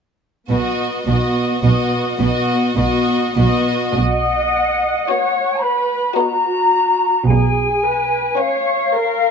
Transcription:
0.49 B1 B2 B3 F#4 D#5
1.07 B1 B2 B3 F#4 D#5
1.63 B1 B2 B3 F#4 D#5
2.19 B1 B2 B3 F#4 D#5
2.76 B1 B2 B3 F#4 D#5
3.36 B1 B2 B3 F#4 D#5
3.95 B1 B2 D#5 F#5
5.07 B3 F#4 C#5 D#5
5.60 B4 B5
6.15 B3 F#4 D#5 A#5
7.26 B1 B2 G#4 G#5
7.84 B4
8.37 C#4 C#5 F5
8.96 A#4

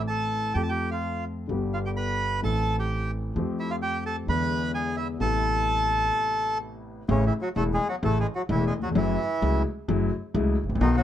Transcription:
Already playing: A1 A2 E3 A3 C4 A4
0.08 A4 A5
0.53 F2 F3 A3 C4 G4 G5
0.58 A4
0.63 A5
0.69 G4 G5
0.91 F4 F5
1.47 G1 G2 D3 G3 B3
1.51 G4
1.74 F4 F5
1.86 G4 G5
1.97 B4 B5
2.41 A1 A2 E3 A3 C4 A4 A5
2.45 A4
2.79 G4 G5
3.34 F2 F3 A3 C4
3.38 G4
3.60 E4 E5
3.71 F4 F5
3.82 G4 G5
4.06 A4 A5
4.27 E2 D3 E3 G#3 B3 E4 B4 B5
4.74 G#4 G#5
4.97 E4 E5
5.19 A1 A2 C3 A3 B3 E4 A4 A5
7.08 A1 A2 C#3 E3 A3 C#4 E4
7.26 E3 E4
7.41 F#3 F#4
7.56 E1 E2 C#3 E3 A3 E4 A4
7.74 G#3 G#4
7.89 F#3 F#4
8.03 A1 A2 C#3 E3 A3 E4 A4
8.20 G#3 G#4
8.35 F#3 F#4
8.49 E1 E2 C#3 E3 A3 E4
8.67 G#3 G#4
8.79 D#2 F#4
8.83 E2 F#3
8.90 F2
8.95 F#1 F#2 C#3 E3 F#3 A3 E4
9.41 C#2 C#3 F#3 A3 E4
9.88 F#1 F#2 C#3 F#3 A3 E4
10.34 C#2 C#3 F#3 A3 E4
10.64 G#1
10.69 A1
10.75 A#1
10.80 B1 B2 D#3 F#3 B3 D#4 F#4
10.97 F#3 F#4

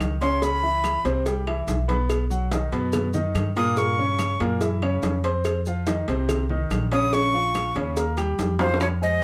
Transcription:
Already playing: D#3 D#4 D#5
0.00 C#2, cowbell, high conga, claves, maracas
0.21 C#3 C#4 C#5 C6, cowbell, high conga, maracas
0.42 C#3 C#4 C#5 B5, cowbell, high conga, maracas
0.63 E3 E4 E5, high conga
0.84 cowbell, high conga, claves, maracas
1.04 C2 C3 C4 C5, cowbell, high conga, maracas
1.26 G3 G4 G5, cowbell, high conga, maracas
1.47 E3 E4 E5, cowbell, high conga, claves
1.67 B1, cowbell, high conga, maracas
1.88 B3 B4 B5, cowbell, high conga, maracas
2.10 cowbell, high conga, claves, maracas
2.30 F#3 F#4 F#5, high conga, maracas
2.51 D#3 D#4 D#5, cowbell, high conga, maracas
2.72 F#2 B2 B3 B4, cowbell, high conga, maracas
2.93 cowbell, high conga, low conga, claves, maracas
3.13 D#3 D#4 D#5, high conga, low conga, maracas
3.35 G2, cowbell, high conga, claves, maracas
3.56 A#2 A#3 A#4 D#6, cowbell, high conga, maracas
3.77 A#2 A#3 A#4 C#6, cowbell, high conga, maracas
3.98 C#3 C#4 C#5, high conga
4.19 cowbell, high conga, claves, maracas
4.40 F#2 A#2 A#3 A#4, cowbell, high conga, maracas
4.61 E3 E4 E5, cowbell, high conga, maracas
4.82 C#3 C#4 C#5, cowbell, high conga, claves
5.03 F2, cowbell, high conga, maracas
5.24 C4 C5 C6, cowbell, maracas
5.44 cowbell, high conga, claves, maracas
5.66 F3 F4 F5, high conga, maracas
5.87 D#3 D#4 D#5, cowbell, high conga, maracas
6.08 C2 C3 C4 C5, cowbell, high conga, maracas
6.29 cowbell, high conga, low conga, claves, maracas
6.49 D#3 D#4 D#5, high conga, low conga
6.70 A#1, cowbell, high conga, claves, maracas
6.92 C#3 C#4 C#5 D#6, cowbell, high conga, maracas
7.13 C#3 C#4 C#5 C#6, cowbell, high conga, maracas
7.34 F3 F4 F5, high conga
7.54 cowbell, high conga, claves, maracas
7.75 D#2 C#3 C#4 C#5, cowbell, high conga, maracas
7.96 A#3 A#4 A#5, cowbell, high conga, maracas
8.17 G3 G4 G5, cowbell, high conga, claves, maracas
8.39 F2, cowbell, high conga, maracas
8.59 F4 C5 F5 F6, cowbell, high bongo, high conga, maracas
8.74 low bongo
8.80 C#5, high bongo, high conga, claves, maracas
9.02 G#3 G#4 C5 D#5, high conga

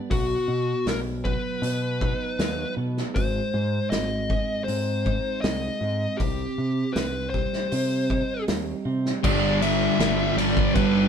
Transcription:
Already playing: G3 B3 D4
0.11 B1 B2 F#4, kick, open hi-hat
0.48 B2
0.86 B1 B3 A#4, snare, open hi-hat
1.24 F#3 B4, kick
1.62 B2 B3, open hi-hat
2.01 D#4, kick
2.39 D#2 F#3, snare, open hi-hat
2.77 B2 B3
2.97 snare
3.15 G#1 G#2 C5, kick, open hi-hat
3.54 G#2
3.90 G#1 C4 D#5, snare, open hi-hat
4.30 G#3, kick
4.64 G#2 C4 C5
4.68 open hi-hat
5.06 D#4, kick
5.41 C2 G#3 D#5, snare, open hi-hat
5.81 G#2 C4
6.17 C2 C3 G4, kick, open hi-hat
6.58 C3
6.93 C2 C4 B4, snare, open hi-hat
7.30 C5
7.34 G3, kick
7.53 snare
7.72 C3 C4, open hi-hat
8.10 D#4, kick
8.48 D#2 G3, snare, open hi-hat
8.85 C3 C4
9.06 snare
9.23 G1 G2 D3 G3 D5, kick, crash
9.61 G2 D3 G3 E5, ride
9.99 G1 G2 D3 G3, snare, ride
10.36 G1 G2 D3 G3 D5, ride
10.57 kick
10.74 G1 G2 D3 G3 B4, kick, ride

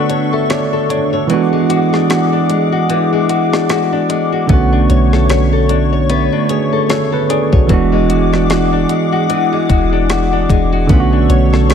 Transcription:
Already playing: D3 A3 B3 D4 F#4 A4 C#5 C#6
0.10 C#5, closed hi-hat
0.33 A4 E5
0.50 C#5 D5, cross-stick, closed hi-hat
0.73 A4
0.89 D4 C#5, closed hi-hat
1.13 A4 C#5
1.27 E3 G#3 B3 G#4 F#5 D6, closed hi-hat
1.32 D4 F#4
1.53 G#3
1.69 F#4, closed hi-hat
1.93 D4, cross-stick
2.10 F#4, cross-stick, closed hi-hat
2.33 D4
2.49 G#3, closed hi-hat
2.72 F#4
2.89 E3, closed hi-hat
3.13 G#3
3.29 F#4, closed hi-hat
3.53 D4, cross-stick
3.69 F#4, cross-stick, closed hi-hat
3.92 D4
4.09 G#3, closed hi-hat
4.32 F#4
4.47 B1 D3 A3 B3 C#5 C#6, kick, closed hi-hat
4.52 C#4 F#4
4.72 D4
4.89 B1 C#5, closed hi-hat
5.13 A4, cross-stick
5.29 C#5, cross-stick, closed hi-hat
5.53 A4
5.69 D4, closed hi-hat
5.93 C#5
6.09 B3, closed hi-hat
6.32 D4
6.49 G#4 C#5, closed hi-hat
6.73 A4
6.89 A4 C#5, cross-stick, closed hi-hat
7.12 A4 B4
7.29 D4 G#4, closed hi-hat
7.52 B1 F#4 C#5, kick
7.67 E1 E3 G#3 B3 G#4 F#5 D6, kick, closed hi-hat
7.72 D4 F#4
7.92 G#3
8.09 F#4, closed hi-hat
8.32 D4, cross-stick
8.49 F#4, cross-stick, closed hi-hat
8.73 D4
8.89 G#3, closed hi-hat
9.12 F#4
9.29 E3, closed hi-hat
9.53 G#3
9.69 E1 F#4, kick, closed hi-hat
9.93 D4
10.09 F#4, cross-stick, closed hi-hat
10.33 D4
10.49 E1 G#3, kick, closed hi-hat
10.73 F#4
10.87 B1 D3 A3 B3 A4 C#5 C#6, kick, closed hi-hat
10.92 C#4 F4
11.00 F#4
11.13 D4
11.29 B1 C#5, closed hi-hat
11.53 A4, cross-stick
11.69 C#5, cross-stick, closed hi-hat

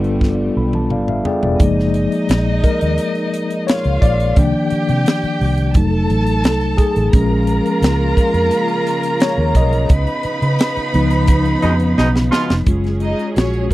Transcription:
Already playing: G1 F3 G3 A3 B3 D4 F4 A4 B4
0.04 closed hi-hat
0.21 kick, snare
0.56 B1 B5
0.73 A5, high tom
0.90 G1 D5 F5, mid tom
1.08 E5 F5, mid tom
1.25 G#4 D5 G5, floor tom
1.43 E1 D5, floor tom
1.58 F#1 F3 G#3 A#3 D#4 D#5, kick, closed hi-hat
1.80 snare
1.94 closed hi-hat
2.12 closed hi-hat
2.29 A#1, snare, closed hi-hat
2.64 A#4, kick, closed hi-hat
2.81 D#2, closed hi-hat
2.98 closed hi-hat
3.15 closed hi-hat
3.34 closed hi-hat
3.50 closed hi-hat
3.67 F4 C#5 F5, snare, closed hi-hat
3.84 C#2, closed hi-hat
4.02 A#1 D5, kick, closed hi-hat
4.20 closed hi-hat
4.36 C2 D#3 F3 A#3 D4 G4 G5, kick, closed hi-hat
4.70 muted fingered electric bass stroke, closed hi-hat
4.89 C3, closed hi-hat
5.06 snare, closed hi-hat
5.23 muted fingered electric bass stroke, closed hi-hat
5.41 C2, open hi-hat
5.58 closed hi-hat
5.74 F1 F#3 A3 D#4 A4 A5, kick, closed hi-hat
6.10 A1, closed hi-hat
6.27 closed hi-hat
6.44 C2, snare, closed hi-hat
6.61 closed hi-hat
6.78 G#4, kick, closed hi-hat
6.96 A1, closed hi-hat
7.12 A#1 C#3 F3 G#3 A#3 C#4 F4 A#4 A#5, kick, closed hi-hat
7.47 closed hi-hat
7.66 closed hi-hat
7.82 C#2, snare, closed hi-hat
8.17 A#4, kick, closed hi-hat
8.34 F2, closed hi-hat
8.51 closed hi-hat
8.68 closed hi-hat
8.87 closed hi-hat
9.03 closed hi-hat
9.20 C#5, snare, closed hi-hat
9.38 D#2
9.55 B1 D#5, kick, closed hi-hat
9.73 closed hi-hat
9.88 C#2 F3 B3 D#4 B4 B5, kick, closed hi-hat
10.07 closed hi-hat
10.23 muted fingered electric bass stroke, closed hi-hat
10.42 C#3, closed hi-hat
10.59 snare, closed hi-hat
10.77 muted fingered electric bass stroke, closed hi-hat
10.94 C#2 F3 B3 D#4, closed hi-hat
11.11 closed hi-hat
11.27 kick, closed hi-hat
11.45 closed hi-hat
11.62 F2 B2 G#3 D#4, closed hi-hat
11.80 closed hi-hat
11.98 B1 B2 G#3 D#4, snare
12.16 snare
12.32 B2 G#3 F4, snare
12.50 F1, snare
12.66 F#1 F#3 G#3 C#4 F4 G#4, kick, closed hi-hat
12.84 snare, closed hi-hat
13.00 D#4 D#5, closed hi-hat
13.19 closed hi-hat
13.36 A#1 C#4 F#4 C#5, snare, closed hi-hat
13.54 closed hi-hat
13.71 kick

